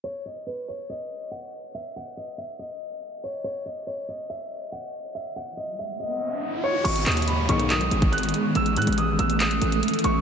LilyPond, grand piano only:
\new Staff \with { instrumentName = "Grand piano" } { \time 4/4 \key gis \phrygian \tempo 4 = 141 cis''8 dis''8 b'8 cis''8 dis''4 fis''8 r8 | e''8 fis''8 dis''8 e''8 dis''4. cis''8 | cis''8 dis''8 cis''8 dis''8 e''4 fis''8 r8 | e''8 fis''8 dis''8 e''8 dis''4. cis''8 |
cis'''8 dis'''8 b''8 cis'''8 dis'''4 fis'''8 r8 | e'''8 fis'''8 dis'''8 e'''8 dis'''4. cis'''8 | }